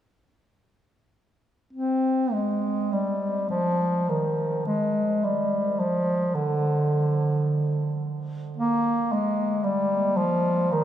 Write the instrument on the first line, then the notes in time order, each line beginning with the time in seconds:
bass clarinet
1.73 C4
2.33 G#3
2.92 G3
3.50 F3
4.09 D#3
4.67 G#3
5.24 G3
5.79 F3
6.35 D3
8.57 A#3
9.13 G#3
9.64 G3
10.17 F3
10.72 D#3